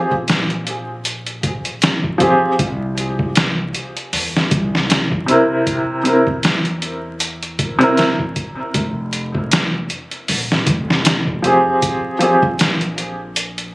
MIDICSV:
0, 0, Header, 1, 4, 480
1, 0, Start_track
1, 0, Key_signature, -4, "minor"
1, 0, Tempo, 769231
1, 1617, Time_signature, 4, 2, 24, 8
1, 8578, End_track
2, 0, Start_track
2, 0, Title_t, "Felt piano"
2, 0, Program_c, 0, 0
2, 0, Note_on_c, 0, 53, 74
2, 0, Note_on_c, 0, 60, 67
2, 0, Note_on_c, 0, 67, 62
2, 0, Note_on_c, 0, 68, 77
2, 63, Note_off_c, 0, 53, 0
2, 68, Note_off_c, 0, 60, 0
2, 72, Note_off_c, 0, 67, 0
2, 78, Note_off_c, 0, 68, 0
2, 1361, Note_on_c, 0, 53, 91
2, 1372, Note_on_c, 0, 60, 81
2, 1382, Note_on_c, 0, 67, 84
2, 1391, Note_on_c, 0, 68, 92
2, 1564, Note_off_c, 0, 53, 0
2, 1569, Note_off_c, 0, 60, 0
2, 1575, Note_off_c, 0, 67, 0
2, 1579, Note_off_c, 0, 68, 0
2, 3285, Note_on_c, 0, 48, 76
2, 3295, Note_on_c, 0, 60, 69
2, 3303, Note_on_c, 0, 64, 71
2, 3315, Note_on_c, 0, 70, 77
2, 3746, Note_off_c, 0, 48, 0
2, 3750, Note_off_c, 0, 60, 0
2, 3754, Note_off_c, 0, 64, 0
2, 3761, Note_off_c, 0, 70, 0
2, 3765, Note_on_c, 0, 48, 71
2, 3775, Note_on_c, 0, 60, 64
2, 3784, Note_on_c, 0, 64, 61
2, 3796, Note_on_c, 0, 70, 80
2, 3904, Note_off_c, 0, 48, 0
2, 3909, Note_off_c, 0, 60, 0
2, 3913, Note_off_c, 0, 64, 0
2, 3919, Note_off_c, 0, 70, 0
2, 4859, Note_on_c, 0, 48, 91
2, 4869, Note_on_c, 0, 60, 87
2, 4880, Note_on_c, 0, 64, 80
2, 4887, Note_on_c, 0, 70, 99
2, 5047, Note_off_c, 0, 48, 0
2, 5052, Note_off_c, 0, 60, 0
2, 5058, Note_off_c, 0, 64, 0
2, 5061, Note_off_c, 0, 70, 0
2, 7129, Note_on_c, 0, 53, 73
2, 7138, Note_on_c, 0, 60, 70
2, 7148, Note_on_c, 0, 67, 73
2, 7157, Note_on_c, 0, 68, 87
2, 7587, Note_off_c, 0, 53, 0
2, 7592, Note_off_c, 0, 60, 0
2, 7597, Note_off_c, 0, 67, 0
2, 7602, Note_off_c, 0, 68, 0
2, 7607, Note_on_c, 0, 53, 71
2, 7617, Note_on_c, 0, 60, 67
2, 7627, Note_on_c, 0, 67, 68
2, 7637, Note_on_c, 0, 68, 81
2, 7745, Note_off_c, 0, 53, 0
2, 7750, Note_off_c, 0, 60, 0
2, 7755, Note_off_c, 0, 67, 0
2, 7760, Note_off_c, 0, 68, 0
2, 8578, End_track
3, 0, Start_track
3, 0, Title_t, "Upright bass"
3, 0, Program_c, 1, 32
3, 71, Note_on_c, 1, 34, 82
3, 1596, Note_off_c, 1, 34, 0
3, 1617, Note_on_c, 1, 36, 98
3, 2317, Note_off_c, 1, 36, 0
3, 2575, Note_on_c, 1, 40, 77
3, 2791, Note_off_c, 1, 40, 0
3, 2817, Note_on_c, 1, 36, 87
3, 3406, Note_off_c, 1, 36, 0
3, 3912, Note_on_c, 1, 40, 78
3, 5436, Note_off_c, 1, 40, 0
3, 5459, Note_on_c, 1, 29, 90
3, 6158, Note_off_c, 1, 29, 0
3, 6421, Note_on_c, 1, 34, 83
3, 6634, Note_off_c, 1, 34, 0
3, 6658, Note_on_c, 1, 29, 88
3, 7247, Note_off_c, 1, 29, 0
3, 7754, Note_on_c, 1, 34, 82
3, 8578, Note_off_c, 1, 34, 0
3, 8578, End_track
4, 0, Start_track
4, 0, Title_t, "Drums"
4, 71, Note_on_c, 9, 36, 99
4, 133, Note_off_c, 9, 36, 0
4, 174, Note_on_c, 9, 42, 78
4, 184, Note_on_c, 9, 38, 119
4, 236, Note_off_c, 9, 42, 0
4, 247, Note_off_c, 9, 38, 0
4, 312, Note_on_c, 9, 42, 42
4, 375, Note_off_c, 9, 42, 0
4, 416, Note_on_c, 9, 42, 69
4, 478, Note_off_c, 9, 42, 0
4, 656, Note_on_c, 9, 42, 86
4, 718, Note_off_c, 9, 42, 0
4, 790, Note_on_c, 9, 42, 46
4, 852, Note_off_c, 9, 42, 0
4, 894, Note_on_c, 9, 42, 62
4, 895, Note_on_c, 9, 36, 96
4, 957, Note_off_c, 9, 36, 0
4, 957, Note_off_c, 9, 42, 0
4, 1030, Note_on_c, 9, 42, 47
4, 1092, Note_off_c, 9, 42, 0
4, 1135, Note_on_c, 9, 42, 83
4, 1145, Note_on_c, 9, 38, 112
4, 1197, Note_off_c, 9, 42, 0
4, 1208, Note_off_c, 9, 38, 0
4, 1271, Note_on_c, 9, 36, 92
4, 1333, Note_off_c, 9, 36, 0
4, 1374, Note_on_c, 9, 42, 70
4, 1375, Note_on_c, 9, 36, 101
4, 1436, Note_off_c, 9, 42, 0
4, 1438, Note_off_c, 9, 36, 0
4, 1616, Note_on_c, 9, 36, 107
4, 1617, Note_on_c, 9, 42, 83
4, 1679, Note_off_c, 9, 36, 0
4, 1679, Note_off_c, 9, 42, 0
4, 1857, Note_on_c, 9, 42, 67
4, 1919, Note_off_c, 9, 42, 0
4, 1991, Note_on_c, 9, 36, 99
4, 2054, Note_off_c, 9, 36, 0
4, 2094, Note_on_c, 9, 42, 82
4, 2104, Note_on_c, 9, 38, 107
4, 2156, Note_off_c, 9, 42, 0
4, 2167, Note_off_c, 9, 38, 0
4, 2337, Note_on_c, 9, 42, 72
4, 2399, Note_off_c, 9, 42, 0
4, 2475, Note_on_c, 9, 42, 42
4, 2537, Note_off_c, 9, 42, 0
4, 2577, Note_on_c, 9, 46, 80
4, 2639, Note_off_c, 9, 46, 0
4, 2724, Note_on_c, 9, 38, 55
4, 2786, Note_off_c, 9, 38, 0
4, 2816, Note_on_c, 9, 36, 96
4, 2816, Note_on_c, 9, 42, 62
4, 2878, Note_off_c, 9, 36, 0
4, 2878, Note_off_c, 9, 42, 0
4, 2964, Note_on_c, 9, 38, 51
4, 3026, Note_off_c, 9, 38, 0
4, 3057, Note_on_c, 9, 42, 83
4, 3068, Note_on_c, 9, 38, 110
4, 3120, Note_off_c, 9, 42, 0
4, 3130, Note_off_c, 9, 38, 0
4, 3192, Note_on_c, 9, 36, 97
4, 3255, Note_off_c, 9, 36, 0
4, 3297, Note_on_c, 9, 42, 67
4, 3360, Note_off_c, 9, 42, 0
4, 3536, Note_on_c, 9, 36, 109
4, 3537, Note_on_c, 9, 42, 83
4, 3598, Note_off_c, 9, 36, 0
4, 3599, Note_off_c, 9, 42, 0
4, 3775, Note_on_c, 9, 42, 68
4, 3838, Note_off_c, 9, 42, 0
4, 3911, Note_on_c, 9, 36, 96
4, 3973, Note_off_c, 9, 36, 0
4, 4013, Note_on_c, 9, 42, 85
4, 4024, Note_on_c, 9, 38, 115
4, 4075, Note_off_c, 9, 42, 0
4, 4086, Note_off_c, 9, 38, 0
4, 4150, Note_on_c, 9, 42, 43
4, 4212, Note_off_c, 9, 42, 0
4, 4256, Note_on_c, 9, 42, 69
4, 4318, Note_off_c, 9, 42, 0
4, 4494, Note_on_c, 9, 42, 94
4, 4556, Note_off_c, 9, 42, 0
4, 4634, Note_on_c, 9, 42, 42
4, 4696, Note_off_c, 9, 42, 0
4, 4735, Note_on_c, 9, 42, 64
4, 4736, Note_on_c, 9, 36, 89
4, 4798, Note_off_c, 9, 36, 0
4, 4798, Note_off_c, 9, 42, 0
4, 4874, Note_on_c, 9, 42, 46
4, 4936, Note_off_c, 9, 42, 0
4, 4975, Note_on_c, 9, 42, 82
4, 4986, Note_on_c, 9, 38, 115
4, 5038, Note_off_c, 9, 42, 0
4, 5048, Note_off_c, 9, 38, 0
4, 5111, Note_on_c, 9, 36, 92
4, 5174, Note_off_c, 9, 36, 0
4, 5216, Note_on_c, 9, 36, 94
4, 5217, Note_on_c, 9, 42, 68
4, 5279, Note_off_c, 9, 36, 0
4, 5279, Note_off_c, 9, 42, 0
4, 5456, Note_on_c, 9, 36, 99
4, 5456, Note_on_c, 9, 42, 84
4, 5518, Note_off_c, 9, 42, 0
4, 5519, Note_off_c, 9, 36, 0
4, 5696, Note_on_c, 9, 42, 68
4, 5758, Note_off_c, 9, 42, 0
4, 5832, Note_on_c, 9, 36, 99
4, 5894, Note_off_c, 9, 36, 0
4, 5937, Note_on_c, 9, 42, 85
4, 5947, Note_on_c, 9, 38, 116
4, 5999, Note_off_c, 9, 42, 0
4, 6010, Note_off_c, 9, 38, 0
4, 6177, Note_on_c, 9, 42, 71
4, 6239, Note_off_c, 9, 42, 0
4, 6311, Note_on_c, 9, 42, 44
4, 6374, Note_off_c, 9, 42, 0
4, 6417, Note_on_c, 9, 46, 82
4, 6479, Note_off_c, 9, 46, 0
4, 6563, Note_on_c, 9, 38, 58
4, 6626, Note_off_c, 9, 38, 0
4, 6656, Note_on_c, 9, 36, 91
4, 6656, Note_on_c, 9, 42, 67
4, 6718, Note_off_c, 9, 42, 0
4, 6719, Note_off_c, 9, 36, 0
4, 6804, Note_on_c, 9, 38, 54
4, 6866, Note_off_c, 9, 38, 0
4, 6895, Note_on_c, 9, 42, 87
4, 6905, Note_on_c, 9, 38, 115
4, 6957, Note_off_c, 9, 42, 0
4, 6968, Note_off_c, 9, 38, 0
4, 7033, Note_on_c, 9, 36, 92
4, 7095, Note_off_c, 9, 36, 0
4, 7138, Note_on_c, 9, 42, 63
4, 7201, Note_off_c, 9, 42, 0
4, 7377, Note_on_c, 9, 36, 108
4, 7377, Note_on_c, 9, 42, 90
4, 7440, Note_off_c, 9, 36, 0
4, 7440, Note_off_c, 9, 42, 0
4, 7617, Note_on_c, 9, 42, 71
4, 7679, Note_off_c, 9, 42, 0
4, 7753, Note_on_c, 9, 36, 103
4, 7816, Note_off_c, 9, 36, 0
4, 7858, Note_on_c, 9, 42, 85
4, 7868, Note_on_c, 9, 38, 108
4, 7920, Note_off_c, 9, 42, 0
4, 7931, Note_off_c, 9, 38, 0
4, 7994, Note_on_c, 9, 42, 43
4, 8056, Note_off_c, 9, 42, 0
4, 8099, Note_on_c, 9, 42, 71
4, 8161, Note_off_c, 9, 42, 0
4, 8337, Note_on_c, 9, 42, 91
4, 8400, Note_off_c, 9, 42, 0
4, 8474, Note_on_c, 9, 42, 46
4, 8536, Note_off_c, 9, 42, 0
4, 8578, End_track
0, 0, End_of_file